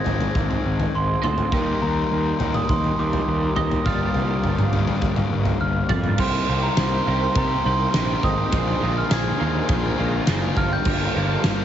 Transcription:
Already playing: G#3 C4 F4 C5 D#5 G#6
0.04 G#1 D#3 G#3 C4 D#4, floor tom
0.08 G#2
0.21 floor tom
0.35 G#1, kick, floor tom
0.51 floor tom
0.65 G#1
0.80 floor tom
0.95 G#1 C6
1.22 D2 G#3 C4 F4 C5 D#5 C6, floor tom
1.38 floor tom
1.51 D#2 D#3 G3 A#3 D#4 G4 D#5 A#5, kick, floor tom
1.56 D#4
1.82 D#2 A#5
2.12 D#2
2.39 D#2 D#3 G3 A#3 D#4, floor tom
2.54 D#6, floor tom
2.69 D#2 C6, kick, floor tom
2.84 floor tom
2.99 D#2 D6
3.13 floor tom
3.28 D#2
3.50 D6
3.56 D#2 D#3 G3 A#3 D#4 G4 D#5 D#6, floor tom
3.72 floor tom
3.85 G1 G2 D3 G3 A#3 D4 F4 G4 D5 F5 F6, kick, floor tom
4.14 C2, floor tom
4.44 G1, floor tom
4.59 mid tom
4.73 G1 G2 D3 G3 A#3 D4, floor tom
4.87 floor tom
5.02 G1, kick, floor tom
5.16 floor tom, mid tom
5.32 G1
5.45 floor tom
5.61 G1 F5 F6
5.89 F2 G3 A#3 F4 G4 D5, kick, floor tom, mid tom
6.04 floor tom
6.18 C2 C3 G3 A#3 C4 D#4 G4 A#4 C5 C6, kick, crash
6.48 C2 C3 G3 A#3 C4 D#4 G4
6.63 A#5
6.77 C2 C3 G3 A#3 C4 D#4 G4 C5, snare, ride bell
7.06 C2 C3 G3 A#3 C4 D#4 G4
7.20 C5 C6
7.35 C3 G3 A#3 C4 D#4 G4 A#4 A#5, kick, ride bell
7.64 C2 C3 G3 A#3 C4 D#4 G4 C5 C6
7.94 A#1 C3 G3 A#3 C4 D#4 G4, snare, ride bell
8.23 G#1 C3 G3 A#3 C4 D#4 G4 D#5 D#6, kick
8.51 A#1 A#2 D3 D#3 F3 G#3 A#3 D4 D#4 F4 G#4 A#5, kick, ride bell
8.80 A#1 A#2 D3 D#3 F3 G#3 A#3 D4 D#4 F4
8.84 G#4
8.95 F5 F6
9.09 A#1 A#2 D3 D#3 F3 G#3 A#3 D4 D#4 F4 G#4 G#5, snare, ride bell
9.14 G#6
9.39 D#2 A#2 D3 D#3 F3 G#3 A#3 D4 D#4 F4 G#4
9.67 A#1 A#2 D3 D#3 F3 G#3 A#3 D4 D#4 F4 G#4, kick, ride bell
9.97 A#1 A#2 D3 D#3 F3 G#3 A#3 D4 D#4 F4 G#4
10.26 F#1 A#2 D3 D#3 F3 G#3 A#3 D4 D#4 F4 G#4, snare, ride bell
10.54 G1 G2 D3 F3 G3 A#3 D4 F4 G4 F5 F6, kick
10.59 F5
10.72 G5 G6
10.85 G1 G2 D3 F3 G3 A#3 D4 F4 G4, kick, crash
11.14 G1 G2 D3 F3 G3 A#3 D4 F4 G4
11.43 G1 G2 D3 F3 G3 A#3 D4 F4 G4, snare, ride bell

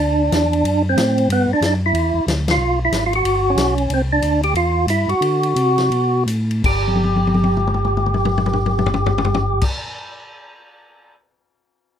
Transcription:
Already playing: D4
0.00 D2
0.32 E2, snare, hi-hat pedal, ride
0.53 ride
0.64 F#2, ride
0.89 C4
0.96 A2, snare, hi-hat pedal, ride
1.18 ride
1.29 G2 B3, ride
1.48 G2
1.53 D4
1.61 F#2, snare, hi-hat pedal, ride
1.66 D4
1.86 E4
1.93 E2, ride
2.14 E2
2.27 D2, snare, hi-hat pedal, ride
2.48 F4, snare, ride
2.57 B1
2.85 E4
2.91 G#1, snare, hi-hat pedal, ride
3.06 F4
3.13 F#4, ride
3.24 G1, ride
3.50 C#4
3.55 B1, snare, hi-hat pedal, ride
3.78 ride
3.90 C2 C4, ride
4.13 D4
4.22 D2, hi-hat pedal, ride
4.43 G4, ride
4.54 E2 F4, ride
4.87 G2 E4, hi-hat pedal, ride
5.08 G2 F#4, ride
5.21 D3, ride
5.43 ride
5.56 C3, hi-hat pedal, ride
5.78 snare, ride
5.90 B2, ride
6.26 A2, hi-hat pedal, ride
6.51 ride
6.64 G1 G4, kick, crash
6.88 high tom
6.95 high tom
7.04 high tom
7.16 high tom
7.27 high tom
7.34 high tom
7.44 high tom
7.57 mid tom
7.67 mid tom
7.74 mid tom
7.85 mid tom
7.97 mid tom
8.06 mid tom
8.14 mid tom
8.25 mid tom
8.38 mid tom
8.46 mid tom
8.53 mid tom
8.66 mid tom
8.79 mid tom
8.86 floor tom
8.94 floor tom
9.06 floor tom
9.18 floor tom
9.25 floor tom
9.34 floor tom
9.61 kick, crash

